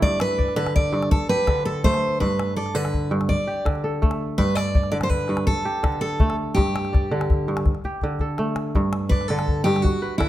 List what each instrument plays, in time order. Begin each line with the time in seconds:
Already playing: kora A3 D4 E4 G4 A4 B4
0.02 kora G2, steel-string acoustic guitar D5, calabash thump
0.20 steel-string acoustic guitar B4, calabash click
0.38 kora D5, calabash thump
0.48 calabash click
0.56 kora D3, steel-string acoustic guitar B4
0.67 calabash click
0.76 steel-string acoustic guitar D5, calabash thump
0.93 kora G2, calabash click
1.03 calabash click
1.11 steel-string acoustic guitar A4, calabash thump
1.29 kora G4, steel-string acoustic guitar B4
1.47 kora D3, calabash thump, calabash click
1.56 calabash click
1.65 steel-string acoustic guitar A4, kora A4
1.84 kora A3, steel-string acoustic guitar C5, calabash thump
1.94 calabash click
2.20 kora G2, steel-string acoustic guitar B4, calabash thump
2.40 calabash click
2.56 steel-string acoustic guitar A4, kora D5
2.66 calabash click
2.75 kora D3, steel-string acoustic guitar B4
2.85 calabash click
2.94 calabash thump
3.11 kora G2, calabash click
3.21 calabash click
3.29 steel-string acoustic guitar D5, calabash thump
3.47 kora G4
3.65 kora D3, calabash thump, calabash click
3.75 calabash click
3.84 kora A4
4.02 kora A3, calabash thump
4.11 calabash click
4.38 kora G2, steel-string acoustic guitar B4, calabash thump
4.55 steel-string acoustic guitar D5, calabash click
4.75 kora D5, calabash thump
4.83 calabash click
4.92 kora D3, steel-string acoustic guitar D5
5.01 steel-string acoustic guitar C5, calabash click
5.09 steel-string acoustic guitar B4, calabash thump
5.28 kora G2, calabash click
5.37 calabash click
5.47 steel-string acoustic guitar A4, calabash thump
5.65 kora G4
5.83 kora D3, calabash thump, calabash click
5.92 calabash click
6.01 steel-string acoustic guitar A4, kora A4
6.20 kora A3, calabash thump
6.30 calabash click
6.55 kora G2, steel-string acoustic guitar G4, calabash thump
6.67 calabash click
6.76 calabash click
6.85 calabash click
6.93 kora D5, calabash thump, calabash click
7.11 kora D3
7.21 calabash click
7.30 calabash thump
7.48 kora G2
7.57 calabash click
7.66 calabash thump, calabash click
7.75 calabash click
7.84 kora G4, calabash thump
8.01 kora D3, calabash thump
8.19 kora A4, calabash thump
8.38 kora A3, calabash click
8.56 calabash click
8.75 kora G2, calabash thump
8.93 calabash click
9.09 steel-string acoustic guitar B4, kora D5, calabash thump
9.21 calabash click
9.28 kora D3, steel-string acoustic guitar A4
9.39 calabash click
9.48 calabash thump
9.64 kora G2, steel-string acoustic guitar G4, calabash click
9.76 calabash click
9.82 steel-string acoustic guitar F#4, kora F#4, calabash thump
10.02 kora B4
10.18 kora D3, steel-string acoustic guitar E4, calabash thump, calabash click